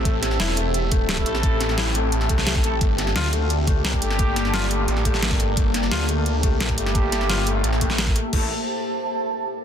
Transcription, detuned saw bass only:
0.05 0.38 A1 loud
0.40 1.25 E1 loud
1.26 1.59 A1 loud
1.60 2.11 A1 medium
2.12 2.28 A1 loud
2.29 2.63 C2 loud
2.64 2.80 A1 loud
2.81 3.14 G1 loud
3.16 3.76 D2 loud
3.76 4.01 C#2 loud
4.02 4.35 G1 loud
4.36 4.87 G1 medium
4.88 5.38 A1 loud
5.40 5.56 G1 loud
5.57 5.90 G1 loud
5.92 6.76 D2 loud
6.78 7.11 G1 loud
7.12 7.63 G1 loud
7.64 8.14 A1 loud
8.33 8.49 A1 loud

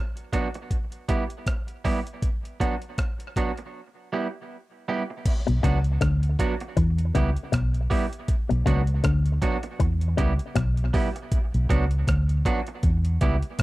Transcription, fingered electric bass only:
5.49 5.62 B1 medium
5.64 5.97 C#2 loud
6.02 6.35 D2 medium
6.77 7.10 E2 loud
7.16 7.34 C#2 loud
7.53 7.86 B1 medium
8.51 8.65 B1 loud
8.67 9.00 C#2 loud
9.05 9.37 D2 loud
9.81 10.13 E2 loud
10.19 10.37 C#2 loud
10.56 10.89 B1 loud
11.54 11.68 B1 medium
11.70 12.03 C#2 medium
12.08 12.41 D2 loud
12.84 13.17 E2 loud
13.22 13.40 C#2 medium
13.60 13.63 B1 medium

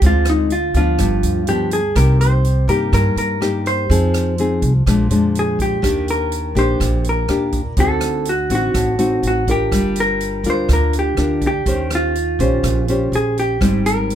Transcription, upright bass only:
0.02 0.70 D2 medium
0.74 0.97 D2 medium
0.98 1.21 G1 medium
1.23 1.91 D2 medium
1.96 2.64 C2 medium
2.68 2.90 G2 medium
2.92 3.15 G2 medium
3.16 3.85 G2 medium
3.90 4.58 F2 medium
4.62 4.85 C2 medium
4.86 5.09 A#1 medium
5.10 5.79 F2 medium
5.83 6.52 D#2 medium
6.55 6.78 A#1 medium
6.80 7.26 A#1 medium
7.28 7.74 D#2 medium
7.77 8.46 D2 medium
8.50 8.73 A1 medium
8.74 9.20 A1 medium
9.23 9.68 A1 medium
9.71 10.41 G1 medium
10.44 10.67 D2 medium
10.68 11.14 D2 medium
11.17 11.63 D2 medium
11.66 12.35 D#2 medium
12.39 12.62 A#1 medium
12.64 13.09 A#1 medium
13.12 13.57 A#1 medium
13.61 14.15 G#1 medium

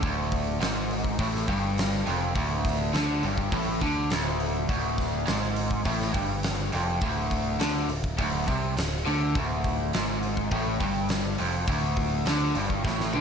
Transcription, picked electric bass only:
0.03 0.57 D1 loud
0.62 1.16 G#1 medium
1.19 1.46 A1 medium
1.48 2.03 G1 loud
2.07 2.34 F1 medium
2.36 2.90 D1 loud
2.94 3.21 D2 medium
3.23 3.50 G1 medium
3.52 3.80 A1 loud
3.82 4.09 D2 loud
4.11 4.65 D1 medium
4.69 5.23 D1 medium
5.28 5.82 G#1 medium
5.86 6.13 A1 loud
6.14 6.69 G1 loud
6.74 7.01 F1 loud
7.01 7.56 D1 medium
7.61 7.88 D2 medium
7.89 8.17 D1 medium
8.19 8.46 D1 loud
8.48 8.75 C2 medium
8.77 9.05 D1 medium
9.07 9.34 D2 loud
9.35 9.90 D1 loud
9.95 10.49 G#1 medium
10.52 10.79 A1 loud
10.81 11.35 G1 loud
11.40 11.67 F1 loud
11.68 12.22 D1 medium
12.26 12.53 D2 medium
12.55 12.83 G1 medium
12.85 13.12 A1 loud
13.15 13.21 D2 medium

